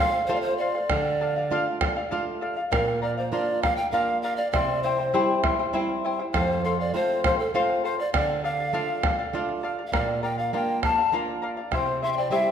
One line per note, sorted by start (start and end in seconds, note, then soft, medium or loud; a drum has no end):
0.00 0.17 A3 medium
0.00 0.17 C4 medium
0.00 0.18 F4 medium
0.00 0.14 A4 medium
0.00 0.13 C5 medium
0.00 0.26 F5 loud
0.00 0.12 F5 medium
0.13 0.28 C5 soft
0.13 0.29 F5 medium
0.26 0.78 A3 medium
0.26 0.78 C4 soft
0.26 0.78 F4 medium
0.26 0.58 A4 medium
0.26 0.37 C5 medium
0.26 0.59 C5 medium
0.26 0.60 F5 loud
0.26 bombo rim soft
0.35 0.42 D5 medium
0.41 0.57 C5 medium
0.45 bombo rim soft
0.57 0.74 A4 medium
0.57 0.75 C5 medium
0.57 2.06 D5 loud
0.57 0.73 F5 medium
0.75 0.91 C5 soft
0.75 0.90 F5 medium
0.75 bombo rim soft
0.90 1.49 D3 medium
0.90 1.20 A4 medium
0.90 1.20 D5 medium
0.90 1.21 F5 medium
0.90 bombo rim medium
0.90 bombo low medium
1.06 bombo rim soft
1.21 1.36 A4 medium
1.21 1.36 D5 medium
1.21 1.35 F5 medium
1.21 bombo rim soft
1.36 1.50 D5 medium
1.36 1.51 F5 medium
1.50 1.99 A3 medium
1.50 2.00 D4 soft
1.50 2.00 F4 medium
1.50 1.80 A4 medium
1.50 1.81 D5 medium
1.50 1.81 F5 loud
1.50 bombo rim soft
1.67 bombo rim soft
1.81 1.96 A4 medium
1.81 1.96 D5 medium
1.81 1.95 F5 medium
1.81 bombo rim medium
1.81 bombo low medium
1.96 2.10 D5 medium
1.96 2.11 F5 medium
2.11 2.60 A3 medium
2.11 2.60 D4 soft
2.11 2.61 F4 medium
2.11 2.40 A4 medium
2.11 2.41 D5 medium
2.11 2.41 F5 medium
2.41 2.57 A4 medium
2.41 2.57 D5 medium
2.41 2.55 F5 medium
2.57 2.70 D5 soft
2.57 2.71 F5 medium
2.71 3.30 A#2 medium
2.71 3.01 A#4 medium
2.71 3.00 A#4 medium
2.71 3.01 D5 medium
2.71 3.02 F5 medium
2.71 bombo rim medium
2.71 bombo low medium
2.88 bombo rim soft
3.02 3.17 A#4 medium
3.02 3.16 D5 medium
3.02 3.17 D5 medium
3.02 3.16 F5 medium
3.17 3.31 C5 medium
3.17 3.32 D5 soft
3.17 3.32 F5 medium
3.32 3.80 A#3 medium
3.32 3.81 D4 medium
3.32 3.81 F4 medium
3.32 3.61 A#4 medium
3.32 3.64 D5 medium
3.32 3.62 D5 medium
3.32 3.63 F5 medium
3.62 3.78 A#4 medium
3.62 3.78 D5 medium
3.62 3.78 F5 loud
3.62 3.77 F5 medium
3.62 bombo rim medium
3.62 bombo low medium
3.76 3.93 D5 soft
3.76 3.93 F5 medium
3.76 3.91 G5 loud
3.91 4.41 A#3 medium
3.91 4.41 D4 medium
3.91 4.41 F4 medium
3.91 4.22 A#4 medium
3.91 4.23 D5 medium
3.91 4.20 F5 medium
3.91 4.24 F5 loud
3.91 bombo rim soft
4.09 bombo rim soft
4.22 4.38 A#4 medium
4.22 4.39 D5 medium
4.22 4.36 F5 medium
4.22 4.37 F5 medium
4.37 4.51 D5 medium
4.37 4.54 D5 soft
4.37 4.53 F5 medium
4.37 bombo rim soft
4.52 5.12 C3 medium
4.52 4.83 E4 medium
4.52 4.84 C5 medium
4.52 4.80 D5 medium
4.52 4.83 E5 medium
4.52 4.84 G5 medium
4.52 bombo rim medium
4.52 bombo low medium
4.69 bombo rim soft
4.83 4.99 E4 medium
4.83 5.69 C5 medium
4.83 4.98 C5 medium
4.83 4.99 E5 medium
4.83 4.97 G5 medium
4.99 5.13 E4 soft
4.99 5.13 C5 medium
4.99 5.14 G5 medium
5.14 5.62 G3 medium
5.14 5.62 C4 medium
5.14 5.42 E4 medium
5.14 5.62 E4 medium
5.14 5.44 G4 medium
5.14 5.43 C5 medium
5.14 5.42 E5 medium
5.14 5.43 G5 medium
5.43 5.59 E4 medium
5.43 5.58 C5 medium
5.43 5.58 E5 medium
5.43 5.58 G5 medium
5.43 bombo rim medium
5.43 bombo low medium
5.59 5.73 E4 medium
5.59 5.74 C5 medium
5.59 5.74 G5 medium
5.73 6.21 G3 medium
5.73 6.22 C4 medium
5.73 6.22 E4 medium
5.73 6.04 E4 medium
5.73 6.04 C5 medium
5.73 6.03 E5 medium
5.73 6.04 G5 medium
5.73 bombo rim soft
5.89 bombo rim soft
6.05 6.19 E4 medium
6.05 6.19 C5 medium
6.05 6.19 E5 medium
6.05 6.18 G5 medium
6.19 6.35 E4 soft
6.19 6.33 C5 soft
6.19 6.33 G5 medium
6.19 bombo rim soft
6.34 6.92 F2 medium
6.34 6.63 A4 medium
6.34 6.62 C5 medium
6.34 6.64 C5 medium
6.34 6.64 F5 loud
6.34 bombo rim medium
6.34 bombo low medium
6.50 bombo rim soft
6.64 6.79 A4 medium
6.64 6.78 A4 medium
6.64 6.79 C5 medium
6.64 6.78 F5 medium
6.79 6.94 C5 soft
6.79 6.96 D5 medium
6.79 6.94 F5 medium
6.94 7.42 A3 medium
6.94 7.42 C4 medium
6.94 7.42 F4 medium
6.94 7.23 A4 medium
6.94 7.24 C5 loud
6.94 7.24 C5 medium
6.94 7.25 F5 medium
7.24 7.39 A4 medium
7.24 7.41 C5 loud
7.24 7.40 C5 medium
7.24 7.38 F5 medium
7.24 bombo rim medium
7.24 bombo low medium
7.39 7.53 A4 medium
7.39 7.54 C5 soft
7.39 7.54 F5 medium
7.54 8.02 A3 medium
7.54 8.02 C4 medium
7.54 8.02 F4 medium
7.54 7.83 A4 medium
7.54 7.82 C5 medium
7.54 7.84 C5 loud
7.54 7.84 F5 loud
7.54 bombo rim soft
7.70 bombo rim soft
7.84 7.99 A4 medium
7.84 7.98 C5 medium
7.84 7.99 C5 medium
7.84 7.98 F5 medium
7.99 8.14 C5 soft
7.99 8.13 D5 loud
7.99 8.14 F5 medium
7.99 bombo rim soft
8.13 8.72 D3 medium
8.13 8.43 A4 medium
8.13 8.45 D5 loud
8.13 8.43 D5 medium
8.13 8.44 F5 medium
8.13 bombo rim medium
8.13 bombo low medium
8.44 8.59 A4 medium
8.44 8.59 D5 medium
8.44 9.34 F5 loud
8.44 8.58 F5 medium
8.44 bombo rim soft
8.59 8.73 D5 medium
8.59 8.73 F5 medium
8.73 9.21 A3 medium
8.73 9.22 D4 soft
8.73 9.22 F4 medium
8.73 9.02 A4 medium
8.73 9.03 D5 medium
8.73 9.03 F5 loud
8.73 bombo rim soft
8.89 bombo rim soft
9.03 9.18 A4 medium
9.03 9.19 D5 medium
9.03 9.17 F5 medium
9.03 bombo rim medium
9.03 bombo low medium
9.19 9.33 D5 medium
9.19 9.33 F5 medium
9.19 bombo rim soft
9.33 9.81 A3 medium
9.33 9.82 D4 soft
9.33 9.82 F4 medium
9.33 9.62 A4 medium
9.33 9.62 D5 medium
9.33 9.63 F5 medium
9.33 bombo rim soft
9.49 bombo rim soft
9.63 9.78 A4 medium
9.63 9.78 D5 medium
9.63 9.77 F5 medium
9.79 9.93 D5 soft
9.79 9.93 F5 medium
9.87 9.95 F5 medium
9.92 10.51 A#2 medium
9.92 10.21 A#4 medium
9.92 10.25 D5 medium
9.92 10.22 D5 medium
9.92 10.23 F5 medium
9.92 bombo rim medium
9.92 bombo low medium
10.08 bombo rim soft
10.23 10.38 A#4 medium
10.23 10.38 D5 medium
10.23 10.37 F5 medium
10.23 10.40 G5 medium
10.38 10.53 D5 soft
10.38 10.53 F5 medium
10.53 11.01 A#3 medium
10.53 11.01 D4 medium
10.53 11.01 F4 medium
10.53 10.82 A#4 medium
10.53 10.83 D5 medium
10.53 10.83 F5 medium
10.53 10.85 G5 medium
10.83 10.98 A#4 medium
10.83 10.98 D5 medium
10.83 10.96 F5 medium
10.83 11.13 A5 loud
10.83 bombo rim medium
10.83 bombo low medium
10.98 11.13 D5 soft
10.98 11.12 F5 medium
11.12 11.60 A#3 medium
11.12 11.60 D4 soft
11.12 11.61 F4 medium
11.12 11.41 A#4 medium
11.12 11.42 D5 medium
11.12 11.42 F5 medium
11.12 bombo rim soft
11.28 bombo rim soft
11.42 11.57 A#4 medium
11.42 11.57 D5 medium
11.42 11.56 F5 medium
11.57 11.73 D5 soft
11.57 11.72 F5 medium
11.57 bombo rim soft
11.71 12.29 C3 medium
11.71 12.02 E4 medium
11.71 12.02 C5 medium
11.71 12.05 C5 medium
11.71 12.01 E5 medium
11.71 12.03 G5 medium
11.71 bombo rim medium
11.71 bombo low medium
11.86 bombo rim soft
12.02 12.17 E4 medium
12.02 12.17 C5 medium
12.02 12.17 E5 medium
12.02 12.12 E5 medium
12.02 12.17 G5 medium
12.13 12.19 E5 medium
12.17 12.31 E4 soft
12.17 12.31 C5 medium
12.17 12.33 D5 medium
12.17 12.31 G5 medium
12.30 12.51 G3 medium
12.30 12.51 C4 soft
12.30 12.51 E4 medium
12.30 12.51 G4 medium
12.30 12.51 C5 medium
12.30 12.51 E5 loud
12.30 12.51 E5 medium
12.30 12.51 G5 medium